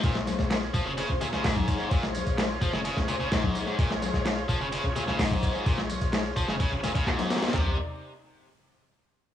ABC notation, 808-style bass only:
X:1
M:4/4
L:1/16
Q:1/4=128
K:Bbdor
V:1 name="808-style bass" clef=bass
B,,,2 z B,,,2 z F,,,2 z B,,, z B,,, B,,,2 z2 | B,,,2 z B,,,2 z F,,,2 z B,,, z B,,, B,,,2 z2 | B,,,2 z B,,,2 z F,,,2 z B,,, z B,,, B,,,2 z2 | B,,,2 z B,,,2 z F,,,2 z A,,,2 z B,,, z3 |
C,,2 z12 z2 |]